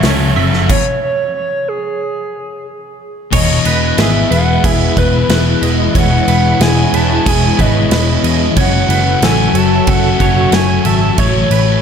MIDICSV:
0, 0, Header, 1, 8, 480
1, 0, Start_track
1, 0, Key_signature, 4, "major"
1, 0, Tempo, 655738
1, 508, Time_signature, 4, 2, 24, 8
1, 8651, End_track
2, 0, Start_track
2, 0, Title_t, "Soft synth lead"
2, 0, Program_c, 0, 80
2, 0, Note_on_c, 0, 76, 92
2, 270, Note_off_c, 0, 76, 0
2, 503, Note_on_c, 0, 73, 110
2, 729, Note_off_c, 0, 73, 0
2, 751, Note_on_c, 0, 73, 105
2, 973, Note_off_c, 0, 73, 0
2, 985, Note_on_c, 0, 73, 100
2, 1232, Note_on_c, 0, 68, 85
2, 1243, Note_off_c, 0, 73, 0
2, 1952, Note_off_c, 0, 68, 0
2, 2442, Note_on_c, 0, 75, 106
2, 2910, Note_on_c, 0, 76, 101
2, 2921, Note_off_c, 0, 75, 0
2, 3162, Note_on_c, 0, 78, 110
2, 3173, Note_off_c, 0, 76, 0
2, 3404, Note_on_c, 0, 76, 100
2, 3415, Note_off_c, 0, 78, 0
2, 3647, Note_on_c, 0, 71, 94
2, 3658, Note_off_c, 0, 76, 0
2, 4119, Note_off_c, 0, 71, 0
2, 4372, Note_on_c, 0, 78, 104
2, 4842, Note_on_c, 0, 80, 110
2, 4853, Note_off_c, 0, 78, 0
2, 5094, Note_on_c, 0, 81, 96
2, 5105, Note_off_c, 0, 80, 0
2, 5330, Note_on_c, 0, 80, 110
2, 5341, Note_off_c, 0, 81, 0
2, 5566, Note_on_c, 0, 75, 88
2, 5577, Note_off_c, 0, 80, 0
2, 6038, Note_off_c, 0, 75, 0
2, 6292, Note_on_c, 0, 78, 122
2, 6765, Note_on_c, 0, 80, 112
2, 6776, Note_off_c, 0, 78, 0
2, 7006, Note_on_c, 0, 81, 104
2, 7017, Note_off_c, 0, 80, 0
2, 7236, Note_on_c, 0, 78, 110
2, 7247, Note_off_c, 0, 81, 0
2, 7716, Note_on_c, 0, 80, 116
2, 7727, Note_off_c, 0, 78, 0
2, 7947, Note_off_c, 0, 80, 0
2, 7951, Note_on_c, 0, 81, 107
2, 8187, Note_on_c, 0, 73, 108
2, 8198, Note_off_c, 0, 81, 0
2, 8651, Note_off_c, 0, 73, 0
2, 8651, End_track
3, 0, Start_track
3, 0, Title_t, "Clean electric guitar"
3, 0, Program_c, 1, 27
3, 33, Note_on_c, 1, 73, 79
3, 263, Note_off_c, 1, 73, 0
3, 266, Note_on_c, 1, 76, 82
3, 507, Note_off_c, 1, 76, 0
3, 2437, Note_on_c, 1, 73, 96
3, 2675, Note_off_c, 1, 73, 0
3, 2678, Note_on_c, 1, 71, 77
3, 2917, Note_on_c, 1, 68, 79
3, 3152, Note_off_c, 1, 71, 0
3, 3152, Note_on_c, 1, 71, 81
3, 3399, Note_off_c, 1, 68, 0
3, 3399, Note_on_c, 1, 68, 82
3, 3636, Note_off_c, 1, 68, 0
3, 3640, Note_off_c, 1, 71, 0
3, 3640, Note_on_c, 1, 71, 86
3, 3868, Note_off_c, 1, 71, 0
3, 3877, Note_on_c, 1, 71, 87
3, 4115, Note_off_c, 1, 71, 0
3, 4119, Note_on_c, 1, 75, 76
3, 4355, Note_off_c, 1, 75, 0
3, 4358, Note_on_c, 1, 73, 93
3, 4595, Note_off_c, 1, 73, 0
3, 4599, Note_on_c, 1, 71, 85
3, 4834, Note_on_c, 1, 68, 92
3, 4835, Note_off_c, 1, 71, 0
3, 5072, Note_off_c, 1, 68, 0
3, 5079, Note_on_c, 1, 71, 80
3, 5314, Note_on_c, 1, 68, 92
3, 5315, Note_off_c, 1, 71, 0
3, 5552, Note_off_c, 1, 68, 0
3, 5552, Note_on_c, 1, 71, 84
3, 5791, Note_off_c, 1, 71, 0
3, 5799, Note_on_c, 1, 71, 86
3, 6034, Note_off_c, 1, 71, 0
3, 6035, Note_on_c, 1, 75, 83
3, 6272, Note_off_c, 1, 75, 0
3, 6273, Note_on_c, 1, 73, 107
3, 6509, Note_off_c, 1, 73, 0
3, 6512, Note_on_c, 1, 71, 91
3, 6750, Note_off_c, 1, 71, 0
3, 6755, Note_on_c, 1, 69, 81
3, 6989, Note_on_c, 1, 73, 80
3, 7235, Note_off_c, 1, 69, 0
3, 7235, Note_on_c, 1, 69, 92
3, 7471, Note_off_c, 1, 69, 0
3, 7477, Note_off_c, 1, 73, 0
3, 7477, Note_on_c, 1, 73, 83
3, 7704, Note_off_c, 1, 73, 0
3, 7713, Note_on_c, 1, 73, 78
3, 7945, Note_off_c, 1, 73, 0
3, 7948, Note_on_c, 1, 76, 82
3, 8189, Note_on_c, 1, 73, 105
3, 8426, Note_off_c, 1, 73, 0
3, 8429, Note_on_c, 1, 71, 88
3, 8651, Note_off_c, 1, 71, 0
3, 8651, Note_off_c, 1, 76, 0
3, 8651, End_track
4, 0, Start_track
4, 0, Title_t, "String machine"
4, 0, Program_c, 2, 50
4, 0, Note_on_c, 2, 73, 81
4, 0, Note_on_c, 2, 78, 75
4, 0, Note_on_c, 2, 81, 77
4, 488, Note_off_c, 2, 81, 0
4, 490, Note_off_c, 2, 73, 0
4, 492, Note_off_c, 2, 78, 0
4, 2431, Note_on_c, 2, 71, 97
4, 2432, Note_on_c, 2, 52, 84
4, 2437, Note_on_c, 2, 64, 79
4, 2440, Note_on_c, 2, 56, 74
4, 4333, Note_off_c, 2, 71, 0
4, 4364, Note_on_c, 2, 73, 91
4, 6240, Note_off_c, 2, 52, 0
4, 6243, Note_off_c, 2, 64, 0
4, 6245, Note_off_c, 2, 56, 0
4, 6256, Note_off_c, 2, 73, 0
4, 6260, Note_on_c, 2, 66, 79
4, 6260, Note_on_c, 2, 76, 92
4, 6261, Note_on_c, 2, 54, 92
4, 6265, Note_on_c, 2, 69, 85
4, 8160, Note_off_c, 2, 76, 0
4, 8161, Note_off_c, 2, 54, 0
4, 8161, Note_off_c, 2, 66, 0
4, 8163, Note_off_c, 2, 69, 0
4, 8179, Note_on_c, 2, 73, 90
4, 8183, Note_on_c, 2, 64, 76
4, 8187, Note_on_c, 2, 57, 86
4, 8651, Note_off_c, 2, 57, 0
4, 8651, Note_off_c, 2, 64, 0
4, 8651, Note_off_c, 2, 73, 0
4, 8651, End_track
5, 0, Start_track
5, 0, Title_t, "Overdriven electric guitar"
5, 0, Program_c, 3, 29
5, 19, Note_on_c, 3, 54, 100
5, 31, Note_on_c, 3, 57, 106
5, 36, Note_on_c, 3, 61, 96
5, 45, Note_on_c, 3, 66, 102
5, 131, Note_off_c, 3, 66, 0
5, 140, Note_on_c, 3, 66, 71
5, 145, Note_off_c, 3, 61, 0
5, 154, Note_on_c, 3, 61, 63
5, 157, Note_off_c, 3, 57, 0
5, 166, Note_on_c, 3, 57, 61
5, 255, Note_off_c, 3, 54, 0
5, 264, Note_on_c, 3, 54, 75
5, 266, Note_off_c, 3, 57, 0
5, 275, Note_off_c, 3, 61, 0
5, 275, Note_on_c, 3, 57, 74
5, 282, Note_off_c, 3, 66, 0
5, 284, Note_on_c, 3, 61, 78
5, 291, Note_on_c, 3, 66, 84
5, 492, Note_off_c, 3, 54, 0
5, 497, Note_off_c, 3, 57, 0
5, 502, Note_off_c, 3, 61, 0
5, 505, Note_off_c, 3, 66, 0
5, 8651, End_track
6, 0, Start_track
6, 0, Title_t, "Distorted electric guitar"
6, 0, Program_c, 4, 30
6, 20, Note_on_c, 4, 42, 94
6, 31, Note_on_c, 4, 49, 96
6, 42, Note_on_c, 4, 54, 111
6, 248, Note_off_c, 4, 42, 0
6, 256, Note_on_c, 4, 42, 82
6, 261, Note_off_c, 4, 49, 0
6, 270, Note_on_c, 4, 49, 84
6, 274, Note_off_c, 4, 54, 0
6, 283, Note_on_c, 4, 54, 95
6, 367, Note_off_c, 4, 54, 0
6, 376, Note_on_c, 4, 54, 80
6, 397, Note_off_c, 4, 49, 0
6, 406, Note_on_c, 4, 49, 62
6, 488, Note_off_c, 4, 42, 0
6, 488, Note_off_c, 4, 54, 0
6, 503, Note_off_c, 4, 49, 0
6, 2423, Note_on_c, 4, 40, 82
6, 2438, Note_on_c, 4, 47, 88
6, 2447, Note_on_c, 4, 52, 100
6, 2898, Note_off_c, 4, 40, 0
6, 2901, Note_on_c, 4, 40, 81
6, 2907, Note_off_c, 4, 47, 0
6, 2915, Note_on_c, 4, 47, 86
6, 2927, Note_off_c, 4, 52, 0
6, 2930, Note_on_c, 4, 52, 97
6, 3143, Note_off_c, 4, 52, 0
6, 3146, Note_on_c, 4, 52, 74
6, 3160, Note_off_c, 4, 47, 0
6, 3169, Note_on_c, 4, 47, 57
6, 3623, Note_off_c, 4, 52, 0
6, 3626, Note_on_c, 4, 52, 70
6, 3640, Note_off_c, 4, 47, 0
6, 3649, Note_on_c, 4, 47, 66
6, 3860, Note_off_c, 4, 40, 0
6, 3863, Note_on_c, 4, 40, 80
6, 3868, Note_off_c, 4, 47, 0
6, 3877, Note_on_c, 4, 47, 87
6, 3886, Note_off_c, 4, 52, 0
6, 3889, Note_on_c, 4, 52, 102
6, 4341, Note_off_c, 4, 40, 0
6, 4349, Note_on_c, 4, 40, 86
6, 4356, Note_off_c, 4, 47, 0
6, 4365, Note_on_c, 4, 47, 99
6, 4374, Note_off_c, 4, 52, 0
6, 4377, Note_on_c, 4, 52, 105
6, 4822, Note_off_c, 4, 40, 0
6, 4830, Note_on_c, 4, 40, 81
6, 4835, Note_off_c, 4, 47, 0
6, 4843, Note_on_c, 4, 47, 90
6, 4853, Note_off_c, 4, 52, 0
6, 4856, Note_on_c, 4, 52, 97
6, 5066, Note_off_c, 4, 52, 0
6, 5069, Note_on_c, 4, 52, 72
6, 5086, Note_off_c, 4, 47, 0
6, 5095, Note_on_c, 4, 47, 60
6, 5310, Note_off_c, 4, 40, 0
6, 5542, Note_off_c, 4, 52, 0
6, 5545, Note_on_c, 4, 52, 72
6, 5556, Note_off_c, 4, 47, 0
6, 5565, Note_on_c, 4, 47, 55
6, 5781, Note_on_c, 4, 40, 86
6, 5784, Note_off_c, 4, 47, 0
6, 5793, Note_on_c, 4, 47, 83
6, 5803, Note_off_c, 4, 52, 0
6, 5806, Note_on_c, 4, 52, 102
6, 6250, Note_off_c, 4, 40, 0
6, 6256, Note_off_c, 4, 47, 0
6, 6259, Note_on_c, 4, 42, 89
6, 6275, Note_on_c, 4, 49, 94
6, 6279, Note_off_c, 4, 52, 0
6, 6282, Note_on_c, 4, 54, 99
6, 6733, Note_off_c, 4, 42, 0
6, 6742, Note_on_c, 4, 42, 91
6, 6745, Note_off_c, 4, 49, 0
6, 6754, Note_on_c, 4, 49, 94
6, 6758, Note_off_c, 4, 54, 0
6, 6767, Note_on_c, 4, 54, 96
6, 6967, Note_off_c, 4, 54, 0
6, 6976, Note_on_c, 4, 54, 76
6, 6995, Note_off_c, 4, 49, 0
6, 7004, Note_on_c, 4, 49, 61
6, 7224, Note_off_c, 4, 42, 0
6, 7444, Note_off_c, 4, 54, 0
6, 7453, Note_on_c, 4, 54, 72
6, 7467, Note_off_c, 4, 49, 0
6, 7475, Note_on_c, 4, 49, 70
6, 7693, Note_on_c, 4, 42, 78
6, 7699, Note_off_c, 4, 49, 0
6, 7708, Note_off_c, 4, 54, 0
6, 7708, Note_on_c, 4, 49, 80
6, 7717, Note_on_c, 4, 54, 96
6, 8164, Note_off_c, 4, 42, 0
6, 8167, Note_off_c, 4, 49, 0
6, 8170, Note_on_c, 4, 45, 92
6, 8176, Note_off_c, 4, 54, 0
6, 8185, Note_on_c, 4, 52, 83
6, 8193, Note_on_c, 4, 57, 92
6, 8646, Note_off_c, 4, 45, 0
6, 8651, Note_off_c, 4, 52, 0
6, 8651, Note_off_c, 4, 57, 0
6, 8651, End_track
7, 0, Start_track
7, 0, Title_t, "Picked electric bass"
7, 0, Program_c, 5, 34
7, 22, Note_on_c, 5, 37, 86
7, 237, Note_off_c, 5, 37, 0
7, 264, Note_on_c, 5, 30, 89
7, 479, Note_off_c, 5, 30, 0
7, 2433, Note_on_c, 5, 28, 93
7, 2616, Note_off_c, 5, 28, 0
7, 2680, Note_on_c, 5, 28, 96
7, 2861, Note_off_c, 5, 28, 0
7, 2917, Note_on_c, 5, 32, 88
7, 3099, Note_off_c, 5, 32, 0
7, 3156, Note_on_c, 5, 28, 83
7, 3338, Note_off_c, 5, 28, 0
7, 3397, Note_on_c, 5, 28, 90
7, 3579, Note_off_c, 5, 28, 0
7, 3638, Note_on_c, 5, 28, 90
7, 3819, Note_off_c, 5, 28, 0
7, 3873, Note_on_c, 5, 28, 88
7, 4056, Note_off_c, 5, 28, 0
7, 4115, Note_on_c, 5, 28, 82
7, 4297, Note_off_c, 5, 28, 0
7, 4357, Note_on_c, 5, 28, 96
7, 4539, Note_off_c, 5, 28, 0
7, 4595, Note_on_c, 5, 28, 95
7, 4777, Note_off_c, 5, 28, 0
7, 4833, Note_on_c, 5, 28, 100
7, 5016, Note_off_c, 5, 28, 0
7, 5072, Note_on_c, 5, 28, 84
7, 5255, Note_off_c, 5, 28, 0
7, 5317, Note_on_c, 5, 28, 91
7, 5498, Note_off_c, 5, 28, 0
7, 5555, Note_on_c, 5, 32, 96
7, 5737, Note_off_c, 5, 32, 0
7, 5788, Note_on_c, 5, 28, 93
7, 5972, Note_off_c, 5, 28, 0
7, 6025, Note_on_c, 5, 40, 99
7, 6211, Note_off_c, 5, 40, 0
7, 6271, Note_on_c, 5, 30, 101
7, 6454, Note_off_c, 5, 30, 0
7, 6506, Note_on_c, 5, 30, 102
7, 6690, Note_off_c, 5, 30, 0
7, 6749, Note_on_c, 5, 33, 96
7, 6932, Note_off_c, 5, 33, 0
7, 6980, Note_on_c, 5, 30, 80
7, 7167, Note_off_c, 5, 30, 0
7, 7228, Note_on_c, 5, 30, 97
7, 7411, Note_off_c, 5, 30, 0
7, 7468, Note_on_c, 5, 30, 99
7, 7650, Note_off_c, 5, 30, 0
7, 7706, Note_on_c, 5, 30, 89
7, 7889, Note_off_c, 5, 30, 0
7, 7944, Note_on_c, 5, 32, 88
7, 8127, Note_off_c, 5, 32, 0
7, 8187, Note_on_c, 5, 33, 96
7, 8369, Note_off_c, 5, 33, 0
7, 8423, Note_on_c, 5, 33, 90
7, 8606, Note_off_c, 5, 33, 0
7, 8651, End_track
8, 0, Start_track
8, 0, Title_t, "Drums"
8, 20, Note_on_c, 9, 46, 55
8, 26, Note_on_c, 9, 38, 104
8, 94, Note_off_c, 9, 46, 0
8, 99, Note_off_c, 9, 38, 0
8, 390, Note_on_c, 9, 38, 31
8, 463, Note_off_c, 9, 38, 0
8, 508, Note_on_c, 9, 49, 92
8, 509, Note_on_c, 9, 36, 99
8, 582, Note_off_c, 9, 36, 0
8, 582, Note_off_c, 9, 49, 0
8, 2434, Note_on_c, 9, 49, 121
8, 2434, Note_on_c, 9, 57, 81
8, 2435, Note_on_c, 9, 36, 116
8, 2508, Note_off_c, 9, 36, 0
8, 2508, Note_off_c, 9, 49, 0
8, 2508, Note_off_c, 9, 57, 0
8, 2674, Note_on_c, 9, 57, 66
8, 2747, Note_off_c, 9, 57, 0
8, 2913, Note_on_c, 9, 57, 74
8, 2918, Note_on_c, 9, 38, 113
8, 2986, Note_off_c, 9, 57, 0
8, 2991, Note_off_c, 9, 38, 0
8, 3160, Note_on_c, 9, 57, 59
8, 3234, Note_off_c, 9, 57, 0
8, 3397, Note_on_c, 9, 36, 118
8, 3397, Note_on_c, 9, 57, 87
8, 3470, Note_off_c, 9, 36, 0
8, 3470, Note_off_c, 9, 57, 0
8, 3637, Note_on_c, 9, 36, 82
8, 3637, Note_on_c, 9, 57, 54
8, 3710, Note_off_c, 9, 57, 0
8, 3711, Note_off_c, 9, 36, 0
8, 3876, Note_on_c, 9, 57, 75
8, 3881, Note_on_c, 9, 38, 112
8, 3949, Note_off_c, 9, 57, 0
8, 3954, Note_off_c, 9, 38, 0
8, 4119, Note_on_c, 9, 57, 64
8, 4192, Note_off_c, 9, 57, 0
8, 4356, Note_on_c, 9, 57, 82
8, 4357, Note_on_c, 9, 36, 111
8, 4429, Note_off_c, 9, 57, 0
8, 4430, Note_off_c, 9, 36, 0
8, 4596, Note_on_c, 9, 57, 67
8, 4669, Note_off_c, 9, 57, 0
8, 4836, Note_on_c, 9, 57, 85
8, 4841, Note_on_c, 9, 38, 107
8, 4909, Note_off_c, 9, 57, 0
8, 4914, Note_off_c, 9, 38, 0
8, 5078, Note_on_c, 9, 57, 71
8, 5151, Note_off_c, 9, 57, 0
8, 5317, Note_on_c, 9, 36, 110
8, 5317, Note_on_c, 9, 57, 89
8, 5390, Note_off_c, 9, 36, 0
8, 5390, Note_off_c, 9, 57, 0
8, 5556, Note_on_c, 9, 36, 80
8, 5558, Note_on_c, 9, 57, 62
8, 5629, Note_off_c, 9, 36, 0
8, 5631, Note_off_c, 9, 57, 0
8, 5792, Note_on_c, 9, 57, 78
8, 5797, Note_on_c, 9, 38, 103
8, 5865, Note_off_c, 9, 57, 0
8, 5870, Note_off_c, 9, 38, 0
8, 6033, Note_on_c, 9, 57, 71
8, 6106, Note_off_c, 9, 57, 0
8, 6270, Note_on_c, 9, 57, 86
8, 6272, Note_on_c, 9, 36, 110
8, 6343, Note_off_c, 9, 57, 0
8, 6345, Note_off_c, 9, 36, 0
8, 6514, Note_on_c, 9, 57, 69
8, 6587, Note_off_c, 9, 57, 0
8, 6751, Note_on_c, 9, 57, 78
8, 6757, Note_on_c, 9, 38, 108
8, 6825, Note_off_c, 9, 57, 0
8, 6830, Note_off_c, 9, 38, 0
8, 6990, Note_on_c, 9, 57, 65
8, 7063, Note_off_c, 9, 57, 0
8, 7225, Note_on_c, 9, 57, 74
8, 7229, Note_on_c, 9, 36, 114
8, 7298, Note_off_c, 9, 57, 0
8, 7302, Note_off_c, 9, 36, 0
8, 7467, Note_on_c, 9, 57, 56
8, 7468, Note_on_c, 9, 36, 85
8, 7540, Note_off_c, 9, 57, 0
8, 7541, Note_off_c, 9, 36, 0
8, 7702, Note_on_c, 9, 57, 77
8, 7707, Note_on_c, 9, 38, 111
8, 7775, Note_off_c, 9, 57, 0
8, 7780, Note_off_c, 9, 38, 0
8, 7941, Note_on_c, 9, 57, 64
8, 8014, Note_off_c, 9, 57, 0
8, 8183, Note_on_c, 9, 57, 80
8, 8186, Note_on_c, 9, 36, 116
8, 8256, Note_off_c, 9, 57, 0
8, 8259, Note_off_c, 9, 36, 0
8, 8424, Note_on_c, 9, 57, 69
8, 8498, Note_off_c, 9, 57, 0
8, 8651, End_track
0, 0, End_of_file